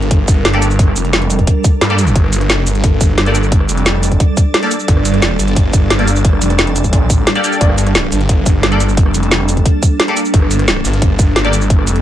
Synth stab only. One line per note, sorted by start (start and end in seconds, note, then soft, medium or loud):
0.53 0.64 A#3 medium
0.53 0.64 G4 medium
0.53 0.64 A4 medium
0.53 0.64 D5 medium
1.90 1.97 A#3 medium
1.90 1.97 G4 medium
1.90 1.97 A4 medium
1.90 1.97 D5 loud
3.26 3.37 A#3 medium
3.26 3.37 G4 medium
3.26 3.37 A4 medium
3.26 3.37 D5 medium
4.63 4.74 A#3 medium
4.63 4.74 G4 medium
4.63 4.74 A4 medium
4.63 4.74 D5 medium
5.99 6.10 A#3 medium
5.99 6.10 G4 medium
5.99 6.10 A4 medium
5.99 6.10 D5 medium
7.35 7.42 A#3 medium
7.35 7.42 G4 medium
7.35 7.42 A4 medium
7.35 7.42 D5 loud
7.44 8.70 A#3 medium
7.44 8.70 G4 medium
7.44 8.70 A4 medium
7.44 8.70 D5 medium
8.72 8.83 A#3 medium
8.72 8.83 G4 medium
8.72 8.83 A4 medium
8.72 8.83 D5 medium
10.08 10.19 A#3 medium
10.08 10.19 G4 medium
10.08 10.19 A4 medium
10.08 10.19 D5 medium
11.44 11.55 A#3 medium
11.44 11.55 G4 medium
11.44 11.55 A4 medium
11.44 11.55 D5 medium